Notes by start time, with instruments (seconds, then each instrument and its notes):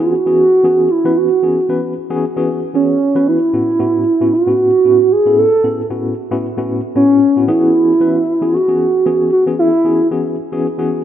0.00 tine electric piano E3 B3 C#4 F#4 G#4
0.05 soft synth lead F4
0.11 soft synth lead F#4
0.26 tine electric piano E3 B3 C#4 F#4 G#4
0.64 tine electric piano E3 B3 C#4 F#4 G#4
0.90 soft synth lead E4
1.05 tine electric piano E3 B3 C#4 F#4 B4
1.17 soft synth lead F#4
1.43 tine electric piano E3 B3 C#4 F#4 G#4
1.69 tine electric piano E3 B3 C#4 F#4 B4
2.10 tine electric piano E3 B3 C#4 F#4 G#4
2.36 tine electric piano E3 B3 C#4 F#4 G#4
2.74 tine electric piano E3 B3 C#4 F#4 G#4, soft synth lead C#4
3.15 tine electric piano E3 B3 C#4 F#4 B4
3.28 soft synth lead E4
3.53 tine electric piano A2 B3 C#4 E4 F#4
3.79 tine electric piano A2 B3 C#4 E4 F#4
4.21 tine electric piano A2 B3 C#4 E4 F#4
4.33 soft synth lead F#4
4.47 tine electric piano A2 B3 C#4 E4 F#4
4.85 tine electric piano A2 B3 C#4 E4 F#4
5.12 soft synth lead G#4
5.26 tine electric piano A2 B3 C#4 E4 A4
5.38 soft synth lead A4
5.64 tine electric piano A2 B3 C#4 E4 A4
5.90 tine electric piano A2 B3 C#4 E4 F#4
6.31 tine electric piano A2 B3 C#4 E4 F#4
6.57 tine electric piano A2 B3 C#4 E4 F#4
6.95 tine electric piano A2 B3 C#4 E4 F#4, soft synth lead C#4
7.36 tine electric piano A2 B3 C#4 E4 F#4
7.48 tine electric piano E3 B3 C#4 F#4 G#4, soft synth lead E4
8.00 tine electric piano E3 B3 C#4 F#4 B4
8.41 tine electric piano E3 B3 C#4 F#4 G#4
8.53 soft synth lead F#4
8.68 tine electric piano E3 B3 C#4 F#4 G#4
9.06 tine electric piano E3 B3 C#4 F#4 G#4
9.33 soft synth lead F#4
9.47 tine electric piano E3 B3 C#4 F#4 G#4
9.59 soft synth lead E4
9.84 tine electric piano E3 B3 C#4 F#4 G#4
10.11 tine electric piano E3 B3 C#4 F#4 G#4
10.52 tine electric piano E3 B3 C#4 F#4 G#4
10.78 tine electric piano E3 B3 C#4 F#4 G#4